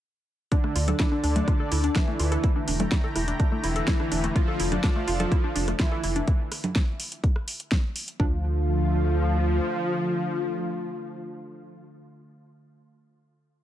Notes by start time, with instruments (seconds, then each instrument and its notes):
0.52 analog polysynth D3, synth drone D3 A3, analog synth lead D4, synth arpeggio sound D4, analog synth pad D4 A4 D5, kick, closed hi-hat
0.64 synth arpeggio sound A3, cross-stick
0.76 analog synth bass D2, synth arpeggio sound F4, open hi-hat
0.88 synth arpeggio sound A4, closed hi-hat, low conga
0.99 analog polysynth D3, analog synth lead D4, synth arpeggio sound E4, kick, snare, closed hi-hat
1.12 synth arpeggio sound D4
1.24 analog synth bass D2, synth arpeggio sound D4, open hi-hat
1.36 synth arpeggio sound A3, closed hi-hat, low conga
1.48 synth arpeggio sound F4, kick, cross-stick, closed hi-hat
1.60 synth arpeggio sound A4
1.72 analog synth bass D2, synth arpeggio sound E4, open hi-hat
1.84 synth arpeggio sound D4, closed hi-hat
1.96 analog polysynth E3, synth arpeggio sound D4, analog synth lead E4, kick, snare, closed hi-hat
2.08 synth arpeggio sound A3
2.20 analog synth bass D2, synth arpeggio sound F4, open hi-hat
2.32 synth arpeggio sound A4, cross-stick, closed hi-hat
2.44 analog synth pad E4 G5 A#5, synth arpeggio sound E4, kick, closed hi-hat
2.56 synth arpeggio sound D4
2.68 analog synth bass E1, synth arpeggio sound D4, open hi-hat
2.80 synth arpeggio sound A3, closed hi-hat, low conga
2.92 synth arpeggio sound E4, kick, snare, closed hi-hat
3.04 synth arpeggio sound A4
3.16 analog synth bass E1, synth arpeggio sound E4, cross-stick, open hi-hat
3.28 synth arpeggio sound D4, closed hi-hat
3.40 synth arpeggio sound D4, kick, closed hi-hat
3.52 synth arpeggio sound A3
3.64 analog synth bass E1, analog polysynth E3, synth arpeggio sound E4, analog synth lead E4, open hi-hat
3.76 synth arpeggio sound A4, closed hi-hat
3.88 synth arpeggio sound E4, kick, snare, closed hi-hat
4.00 synth arpeggio sound D4, cross-stick
4.12 analog synth bass E1, synth arpeggio sound D4, open hi-hat
4.24 synth arpeggio sound A3, closed hi-hat
4.35 analog polysynth F3, analog synth pad D4 A4 D5, analog synth lead F4, synth arpeggio sound F4, kick, closed hi-hat
4.48 synth arpeggio sound A4
4.60 analog synth bass F1, synth arpeggio sound E4, open hi-hat
4.72 synth arpeggio sound D4, closed hi-hat, low conga
4.84 analog polysynth F3, synth arpeggio sound D4, analog synth lead F4, kick, cross-stick, snare, closed hi-hat
4.96 synth arpeggio sound A3
5.08 analog synth bass F1, synth arpeggio sound F4, open hi-hat
5.20 synth arpeggio sound A4, closed hi-hat, low conga
5.32 synth arpeggio sound E4, kick, closed hi-hat
5.44 synth arpeggio sound D4
5.56 analog synth bass F1, synth arpeggio sound D4, open hi-hat
5.68 synth arpeggio sound A3, cross-stick, closed hi-hat
5.79 analog polysynth E3, analog synth lead E4, synth arpeggio sound F4, kick, snare, closed hi-hat
5.92 synth arpeggio sound A4
6.04 analog synth bass F1, synth arpeggio sound E4, open hi-hat
6.16 synth arpeggio sound D4, closed hi-hat
6.28 kick, closed hi-hat
6.52 cross-stick, open hi-hat
6.64 closed hi-hat, low conga
6.76 kick, snare, closed hi-hat
7.00 open hi-hat
7.12 closed hi-hat
7.24 kick, closed hi-hat
7.36 cross-stick
7.48 open hi-hat
7.60 closed hi-hat
7.72 kick, snare, closed hi-hat
7.96 open hi-hat
8.08 closed hi-hat
8.20 analog synth bass D2, synth drone D3 A3, analog synth pad D3 A3 F4, analog polysynth F3, synth arpeggio sound D4, analog synth lead F4, kick